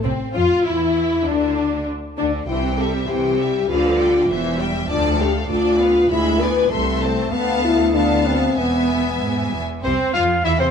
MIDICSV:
0, 0, Header, 1, 8, 480
1, 0, Start_track
1, 0, Tempo, 606673
1, 32, Time_signature, 2, 2, 24, 8
1, 5311, Tempo, 621118
1, 8399, End_track
2, 0, Start_track
2, 0, Title_t, "Violin section"
2, 0, Program_c, 0, 48
2, 31, Note_on_c, 0, 60, 50
2, 94, Note_off_c, 0, 60, 0
2, 274, Note_on_c, 0, 65, 56
2, 511, Note_off_c, 0, 65, 0
2, 517, Note_on_c, 0, 64, 47
2, 1001, Note_off_c, 0, 64, 0
2, 1003, Note_on_c, 0, 62, 54
2, 1484, Note_off_c, 0, 62, 0
2, 1727, Note_on_c, 0, 62, 45
2, 1948, Note_off_c, 0, 62, 0
2, 1972, Note_on_c, 0, 79, 42
2, 2191, Note_off_c, 0, 79, 0
2, 2206, Note_on_c, 0, 76, 39
2, 2443, Note_off_c, 0, 76, 0
2, 2448, Note_on_c, 0, 79, 45
2, 2683, Note_off_c, 0, 79, 0
2, 2689, Note_on_c, 0, 76, 44
2, 2923, Note_off_c, 0, 76, 0
2, 2925, Note_on_c, 0, 77, 44
2, 3145, Note_off_c, 0, 77, 0
2, 3165, Note_on_c, 0, 79, 42
2, 3401, Note_off_c, 0, 79, 0
2, 3402, Note_on_c, 0, 76, 47
2, 3622, Note_off_c, 0, 76, 0
2, 3642, Note_on_c, 0, 79, 43
2, 3875, Note_on_c, 0, 81, 50
2, 3878, Note_off_c, 0, 79, 0
2, 4097, Note_off_c, 0, 81, 0
2, 4118, Note_on_c, 0, 77, 44
2, 4347, Note_on_c, 0, 74, 50
2, 4354, Note_off_c, 0, 77, 0
2, 4572, Note_off_c, 0, 74, 0
2, 4591, Note_on_c, 0, 77, 47
2, 4832, Note_off_c, 0, 77, 0
2, 4834, Note_on_c, 0, 83, 56
2, 5057, Note_off_c, 0, 83, 0
2, 5069, Note_on_c, 0, 80, 48
2, 5311, Note_on_c, 0, 84, 51
2, 5312, Note_off_c, 0, 80, 0
2, 5532, Note_off_c, 0, 84, 0
2, 5543, Note_on_c, 0, 81, 48
2, 5775, Note_off_c, 0, 81, 0
2, 5784, Note_on_c, 0, 81, 52
2, 6236, Note_off_c, 0, 81, 0
2, 6266, Note_on_c, 0, 81, 48
2, 6745, Note_off_c, 0, 81, 0
2, 6756, Note_on_c, 0, 80, 48
2, 7557, Note_off_c, 0, 80, 0
2, 7726, Note_on_c, 0, 72, 67
2, 7787, Note_off_c, 0, 72, 0
2, 7964, Note_on_c, 0, 77, 67
2, 8026, Note_off_c, 0, 77, 0
2, 8205, Note_on_c, 0, 76, 63
2, 8250, Note_off_c, 0, 76, 0
2, 8320, Note_on_c, 0, 72, 62
2, 8367, Note_off_c, 0, 72, 0
2, 8399, End_track
3, 0, Start_track
3, 0, Title_t, "Clarinet"
3, 0, Program_c, 1, 71
3, 7725, Note_on_c, 1, 72, 75
3, 7946, Note_off_c, 1, 72, 0
3, 7958, Note_on_c, 1, 77, 68
3, 8193, Note_on_c, 1, 76, 68
3, 8204, Note_off_c, 1, 77, 0
3, 8313, Note_off_c, 1, 76, 0
3, 8316, Note_on_c, 1, 72, 74
3, 8399, Note_off_c, 1, 72, 0
3, 8399, End_track
4, 0, Start_track
4, 0, Title_t, "Violin section"
4, 0, Program_c, 2, 48
4, 32, Note_on_c, 2, 60, 51
4, 257, Note_off_c, 2, 60, 0
4, 282, Note_on_c, 2, 65, 52
4, 515, Note_off_c, 2, 65, 0
4, 521, Note_on_c, 2, 64, 44
4, 993, Note_off_c, 2, 64, 0
4, 1007, Note_on_c, 2, 62, 51
4, 1487, Note_off_c, 2, 62, 0
4, 1727, Note_on_c, 2, 62, 46
4, 1791, Note_off_c, 2, 62, 0
4, 1968, Note_on_c, 2, 72, 45
4, 2188, Note_off_c, 2, 72, 0
4, 2211, Note_on_c, 2, 67, 39
4, 2446, Note_off_c, 2, 67, 0
4, 2447, Note_on_c, 2, 72, 38
4, 2679, Note_on_c, 2, 67, 38
4, 2683, Note_off_c, 2, 72, 0
4, 2918, Note_off_c, 2, 67, 0
4, 2918, Note_on_c, 2, 71, 50
4, 3141, Note_off_c, 2, 71, 0
4, 3163, Note_on_c, 2, 74, 43
4, 3400, Note_off_c, 2, 74, 0
4, 3406, Note_on_c, 2, 72, 43
4, 3624, Note_off_c, 2, 72, 0
4, 3645, Note_on_c, 2, 76, 49
4, 3879, Note_off_c, 2, 76, 0
4, 3879, Note_on_c, 2, 74, 55
4, 4099, Note_off_c, 2, 74, 0
4, 4115, Note_on_c, 2, 69, 45
4, 4351, Note_on_c, 2, 74, 44
4, 4353, Note_off_c, 2, 69, 0
4, 4575, Note_off_c, 2, 74, 0
4, 4593, Note_on_c, 2, 71, 49
4, 4832, Note_on_c, 2, 76, 54
4, 4833, Note_off_c, 2, 71, 0
4, 5056, Note_off_c, 2, 76, 0
4, 5075, Note_on_c, 2, 74, 48
4, 5315, Note_off_c, 2, 74, 0
4, 5317, Note_on_c, 2, 76, 44
4, 5535, Note_off_c, 2, 76, 0
4, 5555, Note_on_c, 2, 72, 47
4, 5791, Note_off_c, 2, 72, 0
4, 5794, Note_on_c, 2, 77, 57
4, 6241, Note_off_c, 2, 77, 0
4, 6276, Note_on_c, 2, 77, 45
4, 6750, Note_off_c, 2, 77, 0
4, 6758, Note_on_c, 2, 76, 52
4, 7559, Note_off_c, 2, 76, 0
4, 7727, Note_on_c, 2, 60, 62
4, 7947, Note_off_c, 2, 60, 0
4, 7962, Note_on_c, 2, 65, 68
4, 8024, Note_off_c, 2, 65, 0
4, 8197, Note_on_c, 2, 64, 61
4, 8313, Note_off_c, 2, 64, 0
4, 8316, Note_on_c, 2, 60, 63
4, 8399, Note_off_c, 2, 60, 0
4, 8399, End_track
5, 0, Start_track
5, 0, Title_t, "French horn section"
5, 0, Program_c, 3, 60
5, 33, Note_on_c, 3, 60, 56
5, 270, Note_off_c, 3, 60, 0
5, 288, Note_on_c, 3, 65, 55
5, 519, Note_on_c, 3, 64, 55
5, 523, Note_off_c, 3, 65, 0
5, 1002, Note_off_c, 3, 64, 0
5, 1003, Note_on_c, 3, 62, 59
5, 1485, Note_off_c, 3, 62, 0
5, 1723, Note_on_c, 3, 62, 55
5, 1831, Note_off_c, 3, 62, 0
5, 1954, Note_on_c, 3, 64, 57
5, 2064, Note_off_c, 3, 64, 0
5, 2198, Note_on_c, 3, 69, 63
5, 2306, Note_off_c, 3, 69, 0
5, 2433, Note_on_c, 3, 67, 53
5, 2905, Note_off_c, 3, 67, 0
5, 2917, Note_on_c, 3, 65, 70
5, 3386, Note_off_c, 3, 65, 0
5, 3868, Note_on_c, 3, 62, 66
5, 4093, Note_off_c, 3, 62, 0
5, 4101, Note_on_c, 3, 67, 69
5, 4211, Note_off_c, 3, 67, 0
5, 4348, Note_on_c, 3, 65, 65
5, 4821, Note_off_c, 3, 65, 0
5, 4823, Note_on_c, 3, 64, 81
5, 5067, Note_on_c, 3, 71, 78
5, 5068, Note_off_c, 3, 64, 0
5, 5308, Note_on_c, 3, 69, 68
5, 5311, Note_off_c, 3, 71, 0
5, 5415, Note_off_c, 3, 69, 0
5, 5550, Note_on_c, 3, 57, 70
5, 5783, Note_off_c, 3, 57, 0
5, 5788, Note_on_c, 3, 59, 70
5, 6028, Note_off_c, 3, 59, 0
5, 6028, Note_on_c, 3, 64, 65
5, 6264, Note_off_c, 3, 64, 0
5, 6269, Note_on_c, 3, 62, 60
5, 6509, Note_on_c, 3, 60, 64
5, 6511, Note_off_c, 3, 62, 0
5, 6755, Note_off_c, 3, 60, 0
5, 6760, Note_on_c, 3, 59, 61
5, 7491, Note_off_c, 3, 59, 0
5, 8399, End_track
6, 0, Start_track
6, 0, Title_t, "Viola section"
6, 0, Program_c, 4, 48
6, 32, Note_on_c, 4, 60, 54
6, 96, Note_off_c, 4, 60, 0
6, 273, Note_on_c, 4, 65, 57
6, 510, Note_off_c, 4, 65, 0
6, 515, Note_on_c, 4, 64, 53
6, 1000, Note_off_c, 4, 64, 0
6, 1003, Note_on_c, 4, 62, 54
6, 1484, Note_off_c, 4, 62, 0
6, 1725, Note_on_c, 4, 62, 52
6, 1788, Note_off_c, 4, 62, 0
6, 1963, Note_on_c, 4, 52, 43
6, 2186, Note_off_c, 4, 52, 0
6, 2201, Note_on_c, 4, 55, 38
6, 2441, Note_off_c, 4, 55, 0
6, 2442, Note_on_c, 4, 52, 44
6, 2680, Note_off_c, 4, 52, 0
6, 2682, Note_on_c, 4, 55, 41
6, 2920, Note_off_c, 4, 55, 0
6, 2924, Note_on_c, 4, 53, 48
6, 3144, Note_off_c, 4, 53, 0
6, 3167, Note_on_c, 4, 55, 46
6, 3397, Note_on_c, 4, 52, 53
6, 3402, Note_off_c, 4, 55, 0
6, 3620, Note_off_c, 4, 52, 0
6, 3635, Note_on_c, 4, 55, 48
6, 3872, Note_on_c, 4, 53, 53
6, 3874, Note_off_c, 4, 55, 0
6, 4095, Note_off_c, 4, 53, 0
6, 4109, Note_on_c, 4, 57, 47
6, 4350, Note_off_c, 4, 57, 0
6, 4353, Note_on_c, 4, 62, 55
6, 4576, Note_off_c, 4, 62, 0
6, 4588, Note_on_c, 4, 59, 47
6, 4829, Note_on_c, 4, 56, 52
6, 4831, Note_off_c, 4, 59, 0
6, 5055, Note_off_c, 4, 56, 0
6, 5070, Note_on_c, 4, 59, 49
6, 5312, Note_off_c, 4, 59, 0
6, 5313, Note_on_c, 4, 57, 54
6, 5533, Note_off_c, 4, 57, 0
6, 5555, Note_on_c, 4, 60, 49
6, 5786, Note_on_c, 4, 59, 57
6, 5790, Note_off_c, 4, 60, 0
6, 6237, Note_off_c, 4, 59, 0
6, 6266, Note_on_c, 4, 59, 60
6, 6745, Note_off_c, 4, 59, 0
6, 6757, Note_on_c, 4, 59, 56
6, 7558, Note_off_c, 4, 59, 0
6, 7730, Note_on_c, 4, 60, 67
6, 7949, Note_off_c, 4, 60, 0
6, 7962, Note_on_c, 4, 65, 71
6, 8197, Note_off_c, 4, 65, 0
6, 8198, Note_on_c, 4, 64, 59
6, 8245, Note_off_c, 4, 64, 0
6, 8311, Note_on_c, 4, 60, 61
6, 8399, Note_off_c, 4, 60, 0
6, 8399, End_track
7, 0, Start_track
7, 0, Title_t, "Cello section"
7, 0, Program_c, 5, 48
7, 29, Note_on_c, 5, 48, 49
7, 92, Note_off_c, 5, 48, 0
7, 273, Note_on_c, 5, 53, 52
7, 337, Note_off_c, 5, 53, 0
7, 512, Note_on_c, 5, 52, 45
7, 989, Note_off_c, 5, 52, 0
7, 996, Note_on_c, 5, 50, 48
7, 1481, Note_off_c, 5, 50, 0
7, 1720, Note_on_c, 5, 50, 45
7, 1945, Note_off_c, 5, 50, 0
7, 1957, Note_on_c, 5, 48, 53
7, 2382, Note_off_c, 5, 48, 0
7, 2438, Note_on_c, 5, 48, 50
7, 2861, Note_off_c, 5, 48, 0
7, 2916, Note_on_c, 5, 50, 62
7, 3339, Note_off_c, 5, 50, 0
7, 3394, Note_on_c, 5, 40, 60
7, 3817, Note_off_c, 5, 40, 0
7, 3875, Note_on_c, 5, 38, 64
7, 4296, Note_off_c, 5, 38, 0
7, 4347, Note_on_c, 5, 38, 60
7, 4773, Note_off_c, 5, 38, 0
7, 4826, Note_on_c, 5, 38, 62
7, 5253, Note_off_c, 5, 38, 0
7, 5303, Note_on_c, 5, 36, 62
7, 5726, Note_off_c, 5, 36, 0
7, 5784, Note_on_c, 5, 38, 64
7, 6723, Note_off_c, 5, 38, 0
7, 6747, Note_on_c, 5, 40, 51
7, 7183, Note_off_c, 5, 40, 0
7, 7237, Note_on_c, 5, 44, 53
7, 7468, Note_off_c, 5, 44, 0
7, 7483, Note_on_c, 5, 40, 47
7, 7720, Note_on_c, 5, 48, 62
7, 7726, Note_off_c, 5, 40, 0
7, 7782, Note_off_c, 5, 48, 0
7, 7954, Note_on_c, 5, 53, 63
7, 8189, Note_off_c, 5, 53, 0
7, 8191, Note_on_c, 5, 52, 58
7, 8307, Note_on_c, 5, 48, 60
7, 8310, Note_off_c, 5, 52, 0
7, 8399, Note_off_c, 5, 48, 0
7, 8399, End_track
8, 0, Start_track
8, 0, Title_t, "Double bass section"
8, 0, Program_c, 6, 48
8, 35, Note_on_c, 6, 36, 52
8, 98, Note_off_c, 6, 36, 0
8, 276, Note_on_c, 6, 41, 60
8, 339, Note_off_c, 6, 41, 0
8, 523, Note_on_c, 6, 40, 46
8, 994, Note_off_c, 6, 40, 0
8, 1003, Note_on_c, 6, 38, 53
8, 1485, Note_off_c, 6, 38, 0
8, 1725, Note_on_c, 6, 38, 47
8, 1947, Note_off_c, 6, 38, 0
8, 1965, Note_on_c, 6, 36, 52
8, 2386, Note_off_c, 6, 36, 0
8, 2446, Note_on_c, 6, 36, 52
8, 2865, Note_off_c, 6, 36, 0
8, 2921, Note_on_c, 6, 38, 59
8, 3342, Note_off_c, 6, 38, 0
8, 3395, Note_on_c, 6, 28, 59
8, 3818, Note_off_c, 6, 28, 0
8, 3875, Note_on_c, 6, 38, 70
8, 4296, Note_off_c, 6, 38, 0
8, 4355, Note_on_c, 6, 38, 56
8, 4778, Note_off_c, 6, 38, 0
8, 4833, Note_on_c, 6, 38, 72
8, 5257, Note_off_c, 6, 38, 0
8, 5311, Note_on_c, 6, 36, 65
8, 5730, Note_off_c, 6, 36, 0
8, 5788, Note_on_c, 6, 38, 62
8, 6725, Note_off_c, 6, 38, 0
8, 6755, Note_on_c, 6, 28, 54
8, 7557, Note_off_c, 6, 28, 0
8, 7726, Note_on_c, 6, 36, 68
8, 7788, Note_off_c, 6, 36, 0
8, 7967, Note_on_c, 6, 41, 72
8, 8195, Note_off_c, 6, 41, 0
8, 8197, Note_on_c, 6, 40, 61
8, 8313, Note_off_c, 6, 40, 0
8, 8399, End_track
0, 0, End_of_file